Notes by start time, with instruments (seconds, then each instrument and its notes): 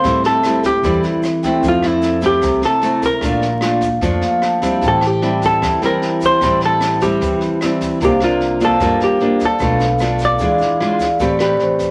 Already playing: hollow-body jazz guitar C5
0.01 upright bass A2, nylon-string guitar A2, vibraphone C4 G4, kick, cross-stick, snare, shaker
0.05 nylon-string guitar G3 C4 E4, vibraphone A4 E5
0.24 hollow-body jazz guitar A4, snare, shaker
0.43 nylon-string guitar G3 C4 E4, cross-stick, snare, shaker
0.63 hollow-body jazz guitar G4, kick, snare, shaker
0.83 upright bass E2, nylon-string guitar E3 G3 C4 E4, kick, snare, shaker
1.03 snare, shaker
1.23 vibraphone E5, cross-stick, snare, shaker
1.43 nylon-string guitar A3 C4 E4, vibraphone G5, kick, snare, shaker
1.60 upright bass F2, vibraphone C4 A4, kick, snare, shaker
1.64 nylon-string guitar F3, vibraphone E5
1.68 hollow-body jazz guitar F4
1.82 nylon-string guitar A3 C4 E4, cross-stick, snare, shaker
1.87 hollow-body jazz guitar E4
2.02 snare, shaker
2.22 nylon-string guitar A3 C4 E4, kick, snare, shaker
2.26 hollow-body jazz guitar G4
2.42 upright bass C2, nylon-string guitar C3, kick, cross-stick, snare, shaker
2.62 hollow-body jazz guitar A4, snare, shaker
2.81 nylon-string guitar A3 C4 E4, snare, shaker
3.02 hollow-body jazz guitar A#4, kick, snare, shaker
3.20 upright bass A#1, nylon-string guitar A#2 A3 D4 F4, vibraphone A#3 D4 F4, kick, cross-stick, snare, shaker
3.25 vibraphone F5
3.42 snare, shaker
3.61 nylon-string guitar A3 D4 F4, cross-stick, snare
3.81 kick, snare, shaker
4.01 upright bass F2, nylon-string guitar F3 A3 D4 F4, kick, snare, shaker
4.21 vibraphone F5, snare, shaker
4.42 vibraphone A5, cross-stick, snare
4.62 nylon-string guitar G3 C4 E4, kick, snare, shaker
4.80 upright bass A1, nylon-string guitar A2, vibraphone E4 C5 A5, kick, snare, shaker
4.85 hollow-body jazz guitar A4, vibraphone G5
5.01 cross-stick, snare, shaker
5.07 hollow-body jazz guitar G4
5.22 nylon-string guitar G3 C4 E4, snare
5.42 kick, snare, shaker
5.46 hollow-body jazz guitar A4
5.62 upright bass E2, nylon-string guitar E3, kick, cross-stick, snare, shaker
5.82 nylon-string guitar G3 C4 E4, hollow-body jazz guitar A#4, snare, shaker
6.02 snare
6.21 kick, snare, shaker
6.26 hollow-body jazz guitar C5
6.41 upright bass A1, nylon-string guitar A2 G3 C4 E4, kick, cross-stick, snare, shaker
6.61 snare, shaker
6.66 hollow-body jazz guitar A4
6.81 cross-stick, snare, shaker
7.00 nylon-string guitar G3 C4 E4, hollow-body jazz guitar G4, kick, snare, shaker
7.21 upright bass E2, nylon-string guitar E3, kick, snare, shaker
7.41 snare, shaker
7.61 nylon-string guitar G3 C4 E4, cross-stick, snare, shaker
7.81 kick, snare, shaker
7.99 upright bass C2, nylon-string guitar C3 A#3 D4 F4, vibraphone A#3 D4 C5, kick, snare, shaker
8.05 hollow-body jazz guitar G4, vibraphone F5
8.20 nylon-string guitar A#3 D4 F4, hollow-body jazz guitar F4, cross-stick, snare, shaker
8.41 snare
8.60 nylon-string guitar A#3 D4 F4, kick, snare, shaker
8.65 hollow-body jazz guitar A4
8.80 upright bass G2, nylon-string guitar G3 A#3 D4 F4, kick, cross-stick, snare, shaker
9.00 hollow-body jazz guitar G4, snare, shaker
9.20 nylon-string guitar A#3 D4 F4, snare
9.40 kick, snare, shaker
9.45 hollow-body jazz guitar A4
9.59 upright bass B1, nylon-string guitar B2 A3 D4 F4, vibraphone D4 A4, kick, cross-stick, snare, shaker
9.63 vibraphone B4 F5
9.79 snare, shaker
9.99 nylon-string guitar A3 D4 F4, cross-stick, snare, shaker
10.19 kick, snare, shaker
10.25 hollow-body jazz guitar D5
10.39 upright bass E2, nylon-string guitar E3 G#3 D4 F4, vibraphone G#4 D5, kick, snare, shaker
10.44 vibraphone F5
10.58 snare, shaker
10.80 nylon-string guitar G#3 D4 F4, cross-stick, snare
10.99 kick, snare, shaker
11.19 upright bass A1, nylon-string guitar A3 C4 G4 B4, kick, snare, shaker
11.23 vibraphone D5
11.39 nylon-string guitar C4 G4 B4, cross-stick, snare, shaker
11.59 upright bass A1, vibraphone C5, snare
11.79 vibraphone B4, kick, snare, shaker